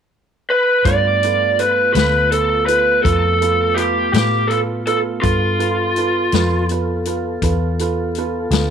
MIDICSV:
0, 0, Header, 1, 6, 480
1, 0, Start_track
1, 0, Tempo, 729040
1, 565, Time_signature, 12, 3, 24, 8
1, 5730, End_track
2, 0, Start_track
2, 0, Title_t, "Lead electric guitar"
2, 0, Program_c, 0, 29
2, 329, Note_on_c, 0, 71, 88
2, 557, Note_on_c, 0, 74, 89
2, 574, Note_off_c, 0, 71, 0
2, 1049, Note_on_c, 0, 71, 64
2, 1055, Note_off_c, 0, 74, 0
2, 1265, Note_off_c, 0, 71, 0
2, 1273, Note_on_c, 0, 71, 80
2, 1523, Note_off_c, 0, 71, 0
2, 1526, Note_on_c, 0, 69, 68
2, 1751, Note_off_c, 0, 69, 0
2, 1754, Note_on_c, 0, 71, 75
2, 1992, Note_off_c, 0, 71, 0
2, 1994, Note_on_c, 0, 69, 77
2, 2471, Note_on_c, 0, 67, 58
2, 2494, Note_off_c, 0, 69, 0
2, 2716, Note_off_c, 0, 67, 0
2, 2723, Note_on_c, 0, 67, 70
2, 2946, Note_on_c, 0, 69, 73
2, 2971, Note_off_c, 0, 67, 0
2, 3014, Note_off_c, 0, 69, 0
2, 3207, Note_on_c, 0, 69, 79
2, 3271, Note_off_c, 0, 69, 0
2, 3435, Note_on_c, 0, 65, 71
2, 4374, Note_off_c, 0, 65, 0
2, 5730, End_track
3, 0, Start_track
3, 0, Title_t, "Upright piano"
3, 0, Program_c, 1, 0
3, 563, Note_on_c, 1, 65, 53
3, 564, Note_on_c, 1, 69, 42
3, 566, Note_on_c, 1, 71, 52
3, 744, Note_off_c, 1, 65, 0
3, 744, Note_off_c, 1, 69, 0
3, 746, Note_off_c, 1, 71, 0
3, 817, Note_on_c, 1, 69, 44
3, 817, Note_on_c, 1, 71, 52
3, 819, Note_on_c, 1, 65, 49
3, 991, Note_off_c, 1, 69, 0
3, 991, Note_off_c, 1, 71, 0
3, 992, Note_off_c, 1, 65, 0
3, 1046, Note_on_c, 1, 69, 34
3, 1048, Note_on_c, 1, 65, 41
3, 1050, Note_on_c, 1, 71, 48
3, 1225, Note_off_c, 1, 69, 0
3, 1226, Note_off_c, 1, 65, 0
3, 1227, Note_off_c, 1, 71, 0
3, 1288, Note_on_c, 1, 71, 52
3, 1289, Note_on_c, 1, 65, 46
3, 1293, Note_on_c, 1, 69, 45
3, 1466, Note_off_c, 1, 71, 0
3, 1467, Note_off_c, 1, 65, 0
3, 1469, Note_off_c, 1, 69, 0
3, 1526, Note_on_c, 1, 71, 53
3, 1527, Note_on_c, 1, 69, 39
3, 1528, Note_on_c, 1, 65, 43
3, 1705, Note_off_c, 1, 71, 0
3, 1706, Note_off_c, 1, 65, 0
3, 1706, Note_off_c, 1, 69, 0
3, 1771, Note_on_c, 1, 65, 43
3, 1771, Note_on_c, 1, 69, 39
3, 1773, Note_on_c, 1, 71, 50
3, 1948, Note_off_c, 1, 65, 0
3, 1948, Note_off_c, 1, 69, 0
3, 1949, Note_off_c, 1, 71, 0
3, 2000, Note_on_c, 1, 69, 40
3, 2001, Note_on_c, 1, 65, 46
3, 2004, Note_on_c, 1, 71, 44
3, 2183, Note_off_c, 1, 65, 0
3, 2183, Note_off_c, 1, 69, 0
3, 2184, Note_off_c, 1, 71, 0
3, 2246, Note_on_c, 1, 69, 41
3, 2249, Note_on_c, 1, 65, 49
3, 2249, Note_on_c, 1, 71, 50
3, 2425, Note_off_c, 1, 69, 0
3, 2427, Note_off_c, 1, 65, 0
3, 2427, Note_off_c, 1, 71, 0
3, 2482, Note_on_c, 1, 71, 56
3, 2483, Note_on_c, 1, 69, 43
3, 2487, Note_on_c, 1, 65, 50
3, 2663, Note_off_c, 1, 71, 0
3, 2664, Note_off_c, 1, 69, 0
3, 2666, Note_off_c, 1, 65, 0
3, 2723, Note_on_c, 1, 65, 46
3, 2724, Note_on_c, 1, 69, 49
3, 2730, Note_on_c, 1, 71, 55
3, 2904, Note_off_c, 1, 65, 0
3, 2904, Note_off_c, 1, 69, 0
3, 2907, Note_off_c, 1, 71, 0
3, 2964, Note_on_c, 1, 65, 44
3, 2965, Note_on_c, 1, 69, 39
3, 2969, Note_on_c, 1, 71, 46
3, 3144, Note_off_c, 1, 65, 0
3, 3145, Note_off_c, 1, 69, 0
3, 3147, Note_off_c, 1, 71, 0
3, 3205, Note_on_c, 1, 69, 46
3, 3206, Note_on_c, 1, 71, 50
3, 3207, Note_on_c, 1, 65, 48
3, 3385, Note_off_c, 1, 69, 0
3, 3386, Note_off_c, 1, 65, 0
3, 3386, Note_off_c, 1, 71, 0
3, 3437, Note_on_c, 1, 69, 47
3, 3438, Note_on_c, 1, 71, 57
3, 3439, Note_on_c, 1, 65, 57
3, 3621, Note_off_c, 1, 69, 0
3, 3622, Note_off_c, 1, 65, 0
3, 3622, Note_off_c, 1, 71, 0
3, 3681, Note_on_c, 1, 69, 44
3, 3683, Note_on_c, 1, 71, 47
3, 3684, Note_on_c, 1, 65, 48
3, 3863, Note_off_c, 1, 69, 0
3, 3864, Note_off_c, 1, 71, 0
3, 3865, Note_off_c, 1, 65, 0
3, 3931, Note_on_c, 1, 65, 45
3, 3935, Note_on_c, 1, 69, 39
3, 3937, Note_on_c, 1, 71, 44
3, 4108, Note_off_c, 1, 65, 0
3, 4110, Note_off_c, 1, 69, 0
3, 4112, Note_off_c, 1, 71, 0
3, 4174, Note_on_c, 1, 65, 52
3, 4177, Note_on_c, 1, 71, 70
3, 4179, Note_on_c, 1, 69, 51
3, 4350, Note_off_c, 1, 65, 0
3, 4351, Note_off_c, 1, 71, 0
3, 4352, Note_off_c, 1, 69, 0
3, 4418, Note_on_c, 1, 65, 49
3, 4421, Note_on_c, 1, 69, 50
3, 4421, Note_on_c, 1, 71, 62
3, 4592, Note_off_c, 1, 65, 0
3, 4593, Note_off_c, 1, 69, 0
3, 4593, Note_off_c, 1, 71, 0
3, 4651, Note_on_c, 1, 65, 50
3, 4656, Note_on_c, 1, 69, 46
3, 4656, Note_on_c, 1, 71, 53
3, 4829, Note_off_c, 1, 65, 0
3, 4831, Note_off_c, 1, 69, 0
3, 4831, Note_off_c, 1, 71, 0
3, 4893, Note_on_c, 1, 69, 50
3, 4894, Note_on_c, 1, 65, 55
3, 4895, Note_on_c, 1, 71, 63
3, 5070, Note_off_c, 1, 65, 0
3, 5070, Note_off_c, 1, 69, 0
3, 5071, Note_off_c, 1, 71, 0
3, 5136, Note_on_c, 1, 65, 57
3, 5142, Note_on_c, 1, 69, 50
3, 5143, Note_on_c, 1, 71, 60
3, 5312, Note_off_c, 1, 65, 0
3, 5314, Note_off_c, 1, 69, 0
3, 5315, Note_off_c, 1, 71, 0
3, 5386, Note_on_c, 1, 69, 53
3, 5388, Note_on_c, 1, 65, 53
3, 5389, Note_on_c, 1, 71, 58
3, 5557, Note_off_c, 1, 69, 0
3, 5558, Note_off_c, 1, 65, 0
3, 5558, Note_off_c, 1, 71, 0
3, 5609, Note_on_c, 1, 65, 62
3, 5613, Note_on_c, 1, 69, 59
3, 5617, Note_on_c, 1, 71, 65
3, 5730, Note_off_c, 1, 65, 0
3, 5730, Note_off_c, 1, 69, 0
3, 5730, Note_off_c, 1, 71, 0
3, 5730, End_track
4, 0, Start_track
4, 0, Title_t, "Tonewheel organ"
4, 0, Program_c, 2, 16
4, 574, Note_on_c, 2, 57, 46
4, 578, Note_on_c, 2, 65, 51
4, 579, Note_on_c, 2, 59, 52
4, 3423, Note_off_c, 2, 57, 0
4, 3424, Note_off_c, 2, 59, 0
4, 3424, Note_off_c, 2, 65, 0
4, 3432, Note_on_c, 2, 59, 49
4, 3432, Note_on_c, 2, 65, 50
4, 3439, Note_on_c, 2, 69, 52
4, 5730, Note_off_c, 2, 59, 0
4, 5730, Note_off_c, 2, 65, 0
4, 5730, Note_off_c, 2, 69, 0
4, 5730, End_track
5, 0, Start_track
5, 0, Title_t, "Fingered electric bass"
5, 0, Program_c, 3, 33
5, 558, Note_on_c, 3, 43, 72
5, 1259, Note_off_c, 3, 43, 0
5, 1282, Note_on_c, 3, 38, 63
5, 1982, Note_off_c, 3, 38, 0
5, 2005, Note_on_c, 3, 41, 70
5, 2703, Note_off_c, 3, 41, 0
5, 2721, Note_on_c, 3, 45, 69
5, 3422, Note_off_c, 3, 45, 0
5, 3447, Note_on_c, 3, 43, 64
5, 4145, Note_off_c, 3, 43, 0
5, 4167, Note_on_c, 3, 41, 71
5, 4865, Note_off_c, 3, 41, 0
5, 4885, Note_on_c, 3, 40, 67
5, 5585, Note_off_c, 3, 40, 0
5, 5600, Note_on_c, 3, 38, 82
5, 5730, Note_off_c, 3, 38, 0
5, 5730, End_track
6, 0, Start_track
6, 0, Title_t, "Drums"
6, 560, Note_on_c, 9, 42, 69
6, 562, Note_on_c, 9, 36, 95
6, 626, Note_off_c, 9, 42, 0
6, 628, Note_off_c, 9, 36, 0
6, 808, Note_on_c, 9, 42, 52
6, 874, Note_off_c, 9, 42, 0
6, 1046, Note_on_c, 9, 42, 56
6, 1111, Note_off_c, 9, 42, 0
6, 1284, Note_on_c, 9, 42, 71
6, 1297, Note_on_c, 9, 38, 82
6, 1350, Note_off_c, 9, 42, 0
6, 1363, Note_off_c, 9, 38, 0
6, 1527, Note_on_c, 9, 42, 60
6, 1593, Note_off_c, 9, 42, 0
6, 1766, Note_on_c, 9, 42, 57
6, 1832, Note_off_c, 9, 42, 0
6, 2008, Note_on_c, 9, 36, 89
6, 2012, Note_on_c, 9, 42, 68
6, 2074, Note_off_c, 9, 36, 0
6, 2078, Note_off_c, 9, 42, 0
6, 2250, Note_on_c, 9, 42, 55
6, 2316, Note_off_c, 9, 42, 0
6, 2485, Note_on_c, 9, 42, 52
6, 2551, Note_off_c, 9, 42, 0
6, 2727, Note_on_c, 9, 42, 69
6, 2740, Note_on_c, 9, 38, 98
6, 2793, Note_off_c, 9, 42, 0
6, 2806, Note_off_c, 9, 38, 0
6, 2966, Note_on_c, 9, 42, 48
6, 3032, Note_off_c, 9, 42, 0
6, 3204, Note_on_c, 9, 42, 50
6, 3270, Note_off_c, 9, 42, 0
6, 3445, Note_on_c, 9, 42, 68
6, 3447, Note_on_c, 9, 36, 92
6, 3511, Note_off_c, 9, 42, 0
6, 3513, Note_off_c, 9, 36, 0
6, 3687, Note_on_c, 9, 42, 46
6, 3753, Note_off_c, 9, 42, 0
6, 3924, Note_on_c, 9, 42, 47
6, 3989, Note_off_c, 9, 42, 0
6, 4162, Note_on_c, 9, 42, 56
6, 4175, Note_on_c, 9, 38, 85
6, 4228, Note_off_c, 9, 42, 0
6, 4241, Note_off_c, 9, 38, 0
6, 4405, Note_on_c, 9, 42, 50
6, 4471, Note_off_c, 9, 42, 0
6, 4644, Note_on_c, 9, 42, 53
6, 4710, Note_off_c, 9, 42, 0
6, 4886, Note_on_c, 9, 36, 86
6, 4886, Note_on_c, 9, 42, 68
6, 4952, Note_off_c, 9, 36, 0
6, 4952, Note_off_c, 9, 42, 0
6, 5131, Note_on_c, 9, 42, 59
6, 5197, Note_off_c, 9, 42, 0
6, 5364, Note_on_c, 9, 42, 45
6, 5430, Note_off_c, 9, 42, 0
6, 5604, Note_on_c, 9, 42, 75
6, 5618, Note_on_c, 9, 38, 101
6, 5670, Note_off_c, 9, 42, 0
6, 5684, Note_off_c, 9, 38, 0
6, 5730, End_track
0, 0, End_of_file